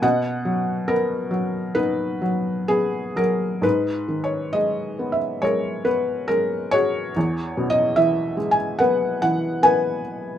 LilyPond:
<<
  \new Staff \with { instrumentName = "Felt piano" } { \time 4/4 \key b \major \tempo 4 = 70 << { fis''4 ais'4 b'4 gis'8 ais'8 | \key gis \minor \tuplet 3/2 { b'4 cis''8 dis''4 e''8 } cis''8 b'8 ais'8 cis''8~ | \tuplet 3/2 { cis''4 dis''8 e''4 gis''8 } fis''8 fis''8 gis''4 | } \\ { dis''2 dis'2 | dis'2 ais'4. <fis' gis'>8~ | <fis' gis'>4. r8 b'4 b'4 | } >> }
  \new Staff \with { instrumentName = "Felt piano" } { \clef bass \time 4/4 \key b \major b,8 fis8 b8 fis8 b8 fis8 b8 fis8 | \key gis \minor gis,8 dis8 gis8 b8 gis8 b8 gis4 | e,8 b,8 e8 gis8 b8 e8 b4 | }
>>